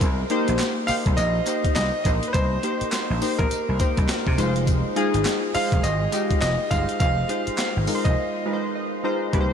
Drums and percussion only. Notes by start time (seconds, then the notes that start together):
0.01 kick, closed hi-hat, tambourine
0.30 closed hi-hat
0.48 closed hi-hat
0.59 snare, clap, closed hi-hat, tambourine
0.88 open hi-hat, tambourine
1.06 kick, closed hi-hat
1.17 closed hi-hat, tambourine
1.47 clap, closed hi-hat, tambourine
1.65 kick, closed hi-hat
1.76 snare, clap, closed hi-hat, tambourine
2.05 kick, closed hi-hat, tambourine
2.23 closed hi-hat
2.34 kick, closed hi-hat, tambourine
2.63 closed hi-hat
2.81 closed hi-hat
2.92 snare, clap, closed hi-hat, tambourine
3.22 open hi-hat, tambourine
3.39 kick, closed hi-hat
3.51 closed hi-hat, tambourine
3.80 kick, clap, closed hi-hat, tambourine
3.97 kick, closed hi-hat
4.09 snare, clap, closed hi-hat, tambourine
4.27 kick
4.38 closed hi-hat, tambourine
4.56 closed hi-hat
4.67 kick, closed hi-hat, tambourine
4.96 closed hi-hat
5.14 closed hi-hat
5.25 snare, clap, closed hi-hat, tambourine
5.54 open hi-hat, tambourine
5.72 kick, closed hi-hat
5.84 closed hi-hat, tambourine
6.12 clap, closed hi-hat, tambourine
6.31 kick, closed hi-hat
6.42 snare, clap, closed hi-hat, tambourine
6.71 kick, closed hi-hat, tambourine
6.89 closed hi-hat
7.00 kick, closed hi-hat, tambourine
7.29 closed hi-hat
7.47 closed hi-hat
7.58 snare, clap, closed hi-hat, tambourine
7.87 open hi-hat, tambourine
8.05 kick, closed hi-hat
9.33 kick, closed hi-hat